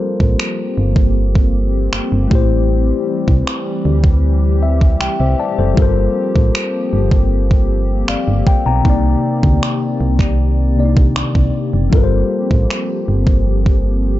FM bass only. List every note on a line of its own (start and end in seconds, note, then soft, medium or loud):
0.20 0.35 A1 medium
0.78 1.89 G1 loud
1.93 2.01 G1 soft
2.12 2.27 G1 medium
2.31 2.93 A1 medium
3.28 3.43 C2 medium
3.85 4.97 D2 loud
5.01 5.08 C2 soft
5.20 5.35 C2 medium
5.59 5.74 F#1 medium
5.77 6.08 G1 loud
6.36 6.51 A1 medium
6.93 8.04 G1 medium
8.08 8.16 G1 soft
8.28 8.43 G1 loud
8.66 8.81 B1 medium
8.85 9.16 C2 loud
9.43 9.58 D2 medium
10.01 11.12 C2 medium
11.16 11.24 C2 soft
11.35 11.51 C2 medium
11.73 11.89 F#1 medium
11.93 12.23 G1 loud
12.51 12.66 A1 medium
13.08 14.20 G1 loud